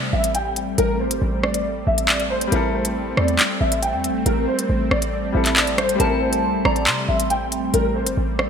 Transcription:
Already playing: C3 G3 A3 C4 E4 A4 D5
0.13 A1 E5
0.24 closed hi-hat
0.35 G5, closed hi-hat
0.56 closed hi-hat
0.78 A1 A#4, closed hi-hat
1.00 C5
1.11 G1, closed hi-hat
1.22 A1
1.43 D5, cross-stick
1.54 closed hi-hat
1.87 A1 E5
1.98 closed hi-hat
2.09 D5, clap, closed hi-hat
2.20 closed hi-hat
2.30 C5
2.41 closed hi-hat
2.47 G3 C4
2.52 A1 G3 E4 A#4, closed hi-hat
2.56 A4
2.74 C5
2.85 closed hi-hat
3.17 E2 D5, cross-stick
3.28 closed hi-hat
3.39 clap, closed hi-hat
3.61 A1 E5
3.72 closed hi-hat
3.82 G5, closed hi-hat
3.93 E2
4.04 closed hi-hat
4.10 A1
4.26 A1 A#4, closed hi-hat
4.48 C5
4.59 closed hi-hat
4.69 A1
4.91 A1 D5, cross-stick
5.02 closed hi-hat
5.32 A1 G3 C4 E4 E5
5.37 A4
5.45 clap, closed hi-hat
5.56 D5, clap, closed hi-hat
5.67 closed hi-hat
5.78 C5, cross-stick, closed hi-hat, open hi-hat
5.89 closed hi-hat
5.95 G3 C4
6.00 A1 E4 A#4 A5, closed hi-hat
6.04 A4
6.22 C5
6.33 closed hi-hat
6.43 C2
6.54 A1
6.65 A1 D5 A#5, cross-stick
6.76 closed hi-hat
6.87 C3 C6, clap, closed hi-hat
7.08 A1 E5
7.20 closed hi-hat
7.30 G5, closed hi-hat
7.52 closed hi-hat
7.74 A1 A#4, closed hi-hat
7.95 C5
8.06 G1, closed hi-hat
8.17 A1
8.39 D5, cross-stick

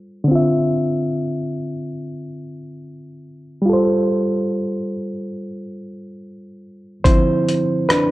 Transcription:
Already playing: G3 F4 A4 C5
0.24 D3 C4
0.31 F4
0.35 E5
3.62 G3 F4
3.69 A4 C5
7.04 D3 F3 C4 E4 C5, kick, closed hi-hat
7.49 closed hi-hat
7.89 D4 B4, cross-stick, closed hi-hat

